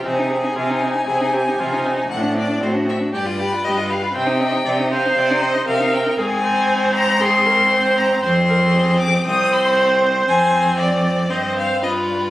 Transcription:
X:1
M:4/4
L:1/16
Q:1/4=117
K:Cm
V:1 name="Violin"
a16 | ^f2 d2 c2 =e2 d4 _e2 =f2 | g6 f2 d2 e2 f2 g2 | a6 b2 c'6 b2 |
c'6 d'2 e'2 c'2 z4 | a4 d4 e2 f2 e2 d2 |]
V:2 name="Viola"
E2 A2 F2 E2 A2 G2 F2 E2 | D4 ^F4 G2 =B6 | c2 e2 d2 c6 B4 | A2 c6 A2 B2 c4 |
c2 B2 A4 c8- | c4 d4 c4 =B4 |]
V:3 name="Violin"
C E C E C E C E C E C E C E C E | C D C D C D C D G F G F G F G F | C E C E C E C E C E C E C E C E | C8 C8 |
C8 C8 | C8 C4 F4 |]
V:4 name="Cello" clef=bass
C,4 C,4 C,4 C,4 | =A,,4 A,,4 G,,4 G,,4 | C,4 C,4 C,4 C,4 | A,,16 |
F,,8 C,,8 | F,,8 G,,4 G,,4 |]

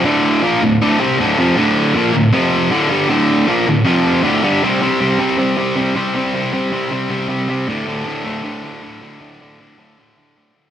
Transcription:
X:1
M:4/4
L:1/8
Q:1/4=157
K:Dm
V:1 name="Distorted electric guitar" clef=bass
[D,,A,,D,]2 [B,,F,B,] [D,,A,,] [D,,A,,D,] [C,G,C] [D,,A,,D,] [F,,C,F,] | [D,,A,,D,]2 [B,,F,B,] [D,,A,,] [F,,C,F,]2 [D,,A,,D,] [G,,D,G,] | [D,,A,,D,]2 [B,,F,B,] [D,,A,,] [F,,C,F,]2 [D,,A,,D,] [G,,D,G,] | [C,G,C] [C,G,C] [C,G,C] [C,G,C] [C,G,C] [C,G,C] [C,G,C] [C,G,C] |
[C,G,C] [C,G,C] [C,G,C] [C,G,C] [C,G,C] [C,G,C] [C,G,C] [C,G,C] | [D,,A,,D,] [D,,A,,D,] [D,,A,,D,] [D,,A,,D,] [D,,A,,D,] [D,,A,,D,] [D,,A,,D,] [D,,A,,D,] | [D,,A,,D,] [D,,A,,D,] [D,,A,,D,] [D,,A,,D,] [D,,A,,D,] [D,,A,,D,] [D,,A,,D,] [D,,A,,D,] |]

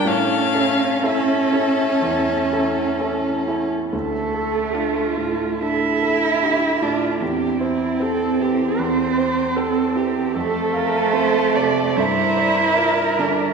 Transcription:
X:1
M:4/4
L:1/16
Q:1/4=74
K:Dm
V:1 name="Violin"
f4 e8- e2 z2 | z4 d4 z4 d4 | z4 c4 z4 c4 | c8 d8 |]
V:2 name="Viola"
^C4 C8- C3 z | A4 F4 A4 G2 F2 | G2 E2 A2 G2 c4 A2 G2 | A2 B2 c2 d2 c4 B4 |]
V:3 name="Violin"
A4 A8- A3 z | z4 F4 z4 F4 | z4 G4 z4 G4 | A8 B8 |]
V:4 name="Cello"
^C12- C2 z2 | A,8 E6 D2 | C16 | A,8 E6 D2 |]
V:5 name="Grand piano"
A,,2 [^CEA]2 [CEA]2 [CEA]2 E,,2 [CEA]2 [CEA]2 [CEA]2 | D,,2 A2 D2 A,,2 D2 A2 D2 A,,2 | E,,2 c2 C2 E,2 E,,2 c2 C2 E,2 | F,,2 f2 C2 C,2 G,,2 d2 F2 D,2 |]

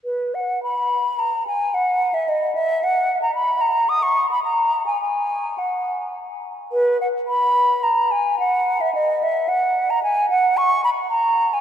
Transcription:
X:1
M:3/4
L:1/16
Q:1/4=109
K:B
V:1 name="Flute"
B2 f2 b4 a2 g2 | f3 e d2 e2 f3 a | b2 a2 d' c'2 b a3 g | g4 f4 z4 |
B2 f2 b4 a2 g2 | f3 e d2 e2 f3 a | [K:F#] g2 f2 c'2 b2 a3 g |]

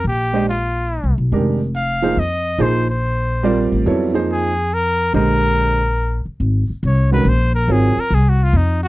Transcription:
X:1
M:3/4
L:1/8
Q:"Swing" 1/4=142
K:Bbmix
V:1 name="Trumpet"
G2 F3 z | z2 f2 e2 | c c4 z | z2 A2 B2 |
B4- B z | [K:Abmix] z2 d _c =c B | A B (3A G F E G |]
V:2 name="Grand piano"
z [A,DGce] z4 | [E,A,DGB] z2 [F,B,EAc] z2 | [F,B,EAc] z3 [G,CFBd]2 | [_G,_C=E=A_d] [F,B,_E_A=c]2 z3 |
[D,A,Gce]3 z3 | [K:Abmix] z3 [E,A,DGB] z2 | [G,CFBd] z4 z |]
V:3 name="Upright bass" clef=bass
B,,,4- (3B,,, C,, _C,, | F,,,4 F,,2 | B,,,4- B,,, =A,,, | F,,6 |
B,,,4- B,,, z | [K:Abmix] A,,, z C,,2 B,,,2 | A,,, z C,,2 F,,2 |]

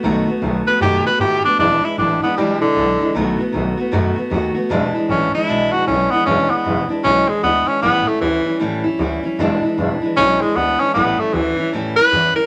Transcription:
X:1
M:4/4
L:1/8
Q:"Swing" 1/4=154
K:Emix
V:1 name="Tenor saxophone"
z3 B =G B G D | D E D B, =G, D,3 | z8 | z2 C E2 F C B, |
C B,2 z C G, B, C | B, A, E,2 z4 | z4 C G, B, C | B, A, E,2 z B2 ^A |]
V:2 name="Steel-string acoustic guitar"
[B,,^D,A,B,F] [A,B,F] [D,A,B,F] [A,B,F] [B,,D,A,B,F] [A,B,F] [D,A,B,F] [A,B,F] | [E,,B,,E,G,DE] [E,G,DE] [E,G,DE] [E,G,DE] [E,,B,,E,G,DE] [E,G,DE] [E,G,DE] [E,G,DE] | [B,,^D,A,B,F] [A,B,F] [D,A,B,F] [A,B,F] [B,,D,A,B,F] [A,B,F] [D,A,B,F] [A,B,F] | [E,,B,,E,G,DE] [E,G,DE] [E,G,DE] [E,G,DE] [E,,B,,E,G,DE] [E,G,DE] [E,G,DE] [E,G,DE] |
[E,,B,,E,G,DE] [E,G,DE] [E,G,DE] [E,G,DE] [E,,B,,E,G,DE] [E,G,DE] [E,G,DE] [E,G,DE] | [A,,E,=G,CE] [G,CE] [E,G,CE] [G,CE] [A,,E,G,CE] [G,CE] [E,G,CE] [G,CE] | [E,,B,,E,G,DE] [E,G,DE] [E,G,DE] [E,G,DE] [E,,B,,E,G,DE] [E,G,DE] [E,G,DE] [E,G,DE] | [A,,E,=G,CE] [G,CE] [E,G,CE] [G,CE] [A,,E,G,CE] [G,CE] [E,G,CE] [G,CE] |]
V:3 name="Upright bass" clef=bass
B,,, z B,,, z F,, z A,, z | E,,, z A,,, z B,,, B,,, B,,, z | B,,, z B,,, z F,, z ^D,, z | E,,, z A,,, z B,,, B,,, B,,, z |
E,,, z E,,, z B,,, z D,, z | A,,, z D,, z E,, E,, D,, z | E,,, z E,,, z B,,, z D,, z | A,,, z D,, z E,, E,, E,, z |]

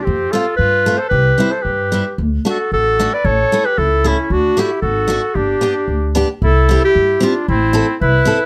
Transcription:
X:1
M:2/4
L:1/16
Q:"Swing" 1/4=114
K:G
V:1 name="Clarinet"
G2 A2 B3 c | B3 c B4 | z2 A2 A3 d | ^c3 B A2 E2 |
F2 G2 A4 | G6 z2 | [K:C] A3 G3 F2 | E4 B4 |]
V:2 name="Trumpet"
C2 =F2 F3 A | G3 A G4 | z2 F2 F3 B | A3 G E2 ^C2 |
D2 E2 F4 | D6 z2 | [K:C] E3 E3 D2 | C4 E4 |]
V:3 name="Steel-string acoustic guitar"
z2 [A,C=F]2 z2 [A,CF]2 | z2 [G,CE]2 z2 [G,CE]2 | z2 [A,DF]2 z2 [A,DF]2 | z2 [A,^CE]2 z2 [A,CE]2 |
z2 [A,DF]2 z2 [A,DF]2 | z2 [B,DG]2 z2 [B,DG]2 | [K:C] z2 [CEG]2 z2 [CEG]2 | z2 [CEA]2 z2 [CEA]2 |]
V:4 name="Upright bass" clef=bass
=F,,2 z2 G,,4 | C,,2 z2 G,,4 | D,,2 z2 A,,,4 | A,,,2 z2 ^C,,4 |
D,,2 z2 _A,,,4 | G,,,2 z2 D,,4 | [K:C] C,,4 G,,2 z2 | A,,,4 C,,2 z2 |]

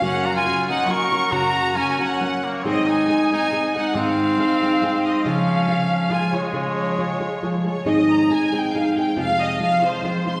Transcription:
X:1
M:3/4
L:1/16
Q:1/4=138
K:Db
V:1 name="Violin section"
g2 b a3 g2 d'4 | b4 a2 g4 d2 | e2 a4 a4 g2 | f8- f2 e2 |
f8 a2 d2- | d8- d2 d2 | [K:Ab] e2 b2 a2 g2 f2 g2 | f2 e2 f2 c4 c'2 |]
V:2 name="Trumpet"
D2 G F3 E2 B4 | G4 D2 D4 B,2 | C2 E4 E4 E2 | C8- C2 C2 |
D8 F2 A,2- | A,8- A,2 z2 | [K:Ab] z12 | z12 |]
V:3 name="Nylon-string guitar"
[G,,D,G,B,DG]4 [G,B,DG]2 [G,B,DG]2 [G,B,DG]2 [G,B,DG]2 | [G,,D,G,B,DG]4 [G,B,DG]2 [G,B,DG]2 [G,B,DG]4 | [A,,E,A,CEA]4 [A,CEA]2 [A,CEA]2 [A,CEA]2 [A,CEA]2 | [A,,E,A,CEA]4 [A,CEA]2 [A,CEA]2 [A,CEA]4 |
[D,F,A,FA]4 [F,A,FA]4 [F,A,FA]2 [A,FA]2 | [D,F,A,FA]4 [F,A,FA]2 [A,FA]2 [F,A,FA]2 [A,FA]2 | [K:Ab] [A,,E,A,CEA]4 [A,CEA]2 [A,CEA]2 [A,CEA]2 [A,CEA]2 | [F,,C,F,A,CF]4 [F,A,CF]2 [F,A,CF]2 [F,A,CF]2 [F,A,CF]2 |]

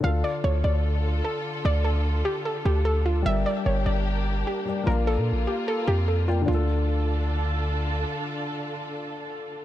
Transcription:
X:1
M:4/4
L:1/16
Q:1/4=149
K:Dm
V:1 name="Synth pluck"
f2 d2 ^c2 d6 A4 | d2 A4 G2 A2 G2 A2 F2 | e2 d2 ^c2 d6 G4 | B2 A4 G2 A2 G2 A2 F2 |
F12 z4 | z16 |]
V:2 name="Grand piano"
[D,DFA]16- | [D,DFA]16 | [G,GBd]12- [G,GBd]2 [G,GBd]2 | [B,Fdf]12- [B,Fdf]2 [B,Bdg]2 |
[D,DFA]16- | [D,DFA]16 |]
V:3 name="String section"
[D,DFA]16- | [D,DFA]16 | [B,G]16 | [B,F]16 |
[D,DFA]16- | [D,DFA]16 |]
V:4 name="808-style bass" clef=bass
D,,2 z2 D,,2 D,,6 z4 | D,,6 z4 D,,6 | G,,,2 z2 G,,,2 G,,,6 z4 | B,,,3 B,,3/2 B,,,3/2 z4 F,,6 |
D,,16 | z16 |]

